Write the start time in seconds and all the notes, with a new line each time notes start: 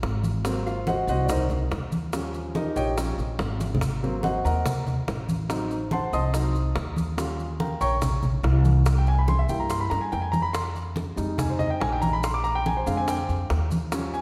Already playing: F3 G3 C#4
0.03 G#1, high bongo, low bongo, high conga, maracas
0.24 high bongo, high conga, maracas
0.45 F#3 A#3 C4, high bongo, high conga, maracas
0.66 F4 F5, high conga, maracas
0.87 F#4 C5 D#5 F#5, high bongo, high conga, maracas
1.07 C2 F#4 C5 D#5 F#5, high conga, maracas
1.26 D5, high bongo, high conga, low conga, maracas
1.30 D#4 A#4 C5 D#5
1.50 high conga, low conga, maracas
1.71 D#2, high bongo, low bongo, high conga, maracas
1.92 high conga, maracas
2.13 F3 G3 C#4, high bongo, high conga, maracas
2.34 high bongo, high conga, maracas
2.55 D#4 G4 A#4 D#5, high bongo, high conga, maracas
2.76 A#1 G4 C#5 D#5 G5, high conga, maracas
2.97 F3 G3 C#4, high bongo, high conga, maracas
3.18 A#1, high bongo, high conga, maracas
3.39 G#1, high bongo, low bongo, high conga, maracas
3.60 high bongo, high conga, maracas
3.75 low conga
3.81 high bongo, high conga, maracas
4.02 F#3 A#3 C4, high conga, maracas
4.23 F#4 C5 D#5 F#5, high bongo, high conga, maracas
4.44 D#2 A#4 D#5 F#5 A#5, high conga, maracas
4.66 high bongo, high conga, low conga, maracas
4.87 high conga, low conga, maracas
5.08 A1, high bongo, low bongo, high conga, maracas
5.29 high conga, maracas
5.49 F#3 C4 D#4, high bongo, high conga, maracas
5.71 high bongo, high conga, maracas
5.91 C5 F#5 A5 C6, high bongo, high conga, maracas
6.13 C2 D#5 A5 C6 D#6, high conga, maracas
6.33 F#3 C4 D#4, high bongo, high conga, maracas
6.55 high bongo, high conga, maracas
6.76 D#2, high bongo, low bongo, high conga, maracas
6.96 high bongo, high conga, maracas
7.17 G3 C#4 F4, high bongo, high conga, maracas
7.39 high conga, maracas
7.60 A#4 F5 G5 A#5, high bongo, high conga, maracas
7.81 A#1 C#5 G5 A#5 C#6, high conga, maracas
8.02 high bongo, high conga, low conga, maracas
8.23 high conga, low conga, maracas
8.43 C2, high bongo, low bongo, high conga, maracas
8.65 high conga, maracas
8.86 high bongo, maracas
8.98 G5
9.07 G#5, high bongo, high conga, maracas
9.19 B5
9.28 C6, high bongo, high conga, maracas
9.39 E5
9.49 G2 G3 A#3 E4 G5, high conga, maracas
9.60 A#5
9.70 C6, high bongo, high conga, maracas
9.80 B5
9.90 G2 A#5, high bongo, high conga, maracas
10.01 G#5
10.12 F2 G5, low bongo, high conga, maracas
10.22 G#5
10.32 A#5, low bongo, high conga, maracas
10.42 B5
10.53 C6, high bongo, high conga, maracas
10.75 high conga, maracas
10.96 high bongo, high conga, maracas
11.16 F2 G3 G#3 D#4, high conga, maracas
11.38 G#5, high bongo, high conga, low conga, maracas
11.50 C5
11.59 D#5, high conga, low conga, maracas
11.70 G5
11.80 A#1 G#5, high bongo, low bongo, high conga, maracas
11.92 G5
12.02 A#5, high conga, maracas
12.13 B5
12.23 C6, high bongo, high conga, maracas
12.34 D6
12.44 A#5, high bongo, high conga, maracas
12.55 G5
12.66 G#5, high bongo, high conga, maracas
12.77 C5
12.86 F2 D3 G#3 C4 F5, high conga, maracas
12.97 G#5
13.08 G5, high bongo, high conga, maracas
13.29 F2, high bongo, high conga, maracas
13.50 D#2, high bongo, low bongo, high conga, maracas
13.71 high bongo, high conga, maracas
13.92 F3 G3 C#4, high bongo, high conga, maracas
14.14 G#5, high conga, maracas